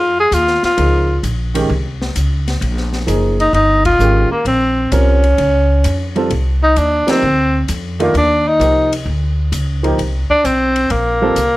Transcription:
Already playing: F2 F4
0.20 G#4
0.31 D#2 F4, hi-hat pedal, ride
0.47 snare
0.63 F4, muted upright bass stroke, snare, ride
0.77 C#2 F3 A#3 D#4 G#4, ride
1.23 A#1, hi-hat pedal, ride
1.54 D#3 G#3 C#4 G4, ride
1.69 C2
2.02 snare
2.16 C#2, hi-hat pedal, ride
2.48 snare, ride
2.61 A#1, ride
2.77 snare
2.93 snare
3.07 F#1 F3 A#3 D#4 G#4, hi-hat pedal, ride
3.40 D#4, ride
3.53 G1 D#4, ride
3.85 F4, kick, ride
3.99 G#1 D#3 G#3 C#4 G4, hi-hat pedal
4.31 A#3, muted upright bass stroke
4.45 A#1 C4, ride
4.91 C2 G3 C4 C#4 F4 A#4, hi-hat pedal, ride
5.23 ride
5.38 C#2, ride
5.84 F2, hi-hat pedal, ride
6.16 G3 C4 F4 A4, ride
6.30 C2, ride
6.63 D#4
6.76 D#2 D4, hi-hat pedal, ride
7.07 F3 A#3 C4 D#4 G4, muted upright bass stroke, snare, ride
7.22 D2
7.68 F2, hi-hat pedal, ride
7.99 D#3 A3 A#3 D4 F4, ride
8.14 D#2 D4, ride
8.47 D#4
8.59 C2 F3 A#3 D#4 G4, hi-hat pedal, ride
8.93 ride
9.06 D2
9.52 C#2, hi-hat pedal, ride
9.83 F3 A#3 D#4 G4, ride
9.98 C2, ride
10.30 D4, muted upright bass stroke, kick
10.44 B1 C4, hi-hat pedal, ride
10.76 ride
10.90 A#1 A#3, ride
11.22 G3 C4 F4 A4
11.36 C2, hi-hat pedal, ride

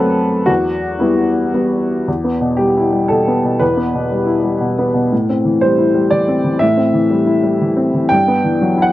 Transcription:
Already playing: F#2 F#3 A3 C4 A4 B4
0.46 E2 F#4
0.99 G3 B3 E4
1.54 G3 B3
2.08 E2
2.24 B3
2.41 B2
2.57 G3 G4
2.77 E4
2.92 G3
3.08 B2 A4
3.28 B3
3.44 B2
3.60 E2 B4
3.77 B3
3.94 B2
4.11 G3
4.26 E4
4.43 G3
4.60 B2
4.79 B3
4.94 B2
5.12 A2
5.29 C4
5.45 E3
5.61 G3 C5
5.78 E4
5.94 G3
6.11 E3 D5
6.28 C4
6.44 E3
6.59 A2 E5
6.77 C4
6.94 E3
7.10 G3
7.26 E4
7.43 G3
7.62 E3
7.77 C4
7.94 E3
8.09 G2 G5
8.28 B3
8.44 E3
8.61 F#3
8.77 E4
8.82 F#5

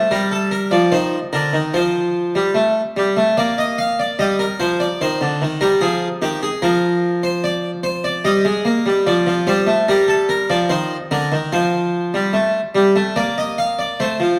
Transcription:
Already playing: A3
0.11 G3 A#4
0.31 A4
0.51 A#4
0.71 F3 D5
0.92 D#3 C5
1.33 D3 A#4
1.53 D#3
1.74 F3 C5
2.35 G3
2.55 A3
2.97 G3
3.17 A3
3.37 A#3 D5
3.58 D#5
3.78 F5
3.99 D5
4.19 G3 D#5
4.39 A#4
4.60 F3 C5
4.80 D5
5.01 D#3 C5
5.21 D3
5.42 D#3
5.61 G3 A#4
5.81 F3 G#4
6.22 D#3 G4
6.43 G#4
6.62 F3 A#4
7.23 C5
7.44 D5
7.83 C5
8.04 D5
8.25 G3 D#5
8.45 G#3
8.65 A#3
8.86 G3
9.07 F3 D5
9.27 F3
9.47 G3 C5
9.67 A3
9.88 G3 A#4
10.08 A4
10.29 A#4
10.50 F3 D5
10.69 D#3 C5
11.11 D3 A#4
11.32 D#3
11.53 F3 C5
12.14 G3
12.33 A3
12.75 G3
12.96 A3
13.16 A#3 D5
13.38 D#5
13.58 F5
13.79 D5
14.00 A3 C5
14.20 F3

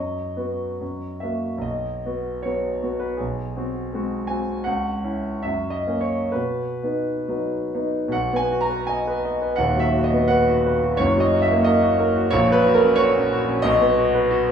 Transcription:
Already playing: F#2 D#5
0.37 B3 F#4
0.81 F#2
1.20 A#3 F#4 E5
1.58 B1 D#5
2.05 B3 F#4
2.42 F#3 B3 F#4 C#5
2.83 B3 F#4
2.99 B4
3.17 B1 G#4
3.56 C4 F#4
3.93 G#3 C4 F#4
4.27 C4 F#4 G#5
4.64 C#2 F#5
5.04 C#4 E4
5.43 F#2 E5
5.70 D#5
5.87 A#3 C#4
6.01 C#5
6.32 B2 B4
6.83 B3 D#4
7.28 F#3 B3 D#4
7.74 B3 D#4
8.08 B2 F#5
8.14 B1
8.33 B3 G#5
8.51 F#4
8.61 A#5
8.70 B4
8.87 D#5 G#5
9.07 B4
9.25 D#5
9.42 B4
9.56 D#1 D#2 F#5
9.76 F#3 E5
9.94 F#4
10.04 D#5
10.12 B3
10.28 B4 F#5
10.48 F#4
10.66 B4
10.83 F#4
10.97 F#1 F#2 C#5
11.16 F#3 D#5
11.34 F#4
11.42 E5
11.51 A#3
11.64 A#4 D#5
11.82 F#4
11.99 A#4
12.16 F#4
12.31 A#1 A#2 C#5
12.50 F#3 B4
12.66 F#4
12.74 A#4
12.83 C#4
12.96 F#4 C#5
13.16 C#4
13.32 F#4
13.48 C#4
13.62 B1 B2 D#5
13.81 B3
13.97 F#4
14.15 B4
14.31 F#4

